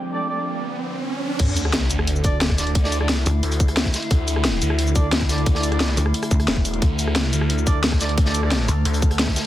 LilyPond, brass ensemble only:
\new Staff \with { instrumentName = "Brass ensemble" } { \time 4/4 \key c \mixolydian \tempo 4 = 177 r16 <d' a' d''>8 <d' a' d''>8 r2 r8. | r2 r8 <d' a' d''>8 r8 <d' a' d''>8 | r16 <d' a' d''>8 <d' a' d''>8 r2 r8. | r2 r8 <d' a' d''>8 r8 <d' a' d''>8 |
r16 <d' a' d''>8 <d' a' d''>8 r2 r8. | r2 r8 <d' a' d''>8 r8 <d' a' d''>8 | r16 <d' a' d''>8 <d' a' d''>8 r2 r8. | }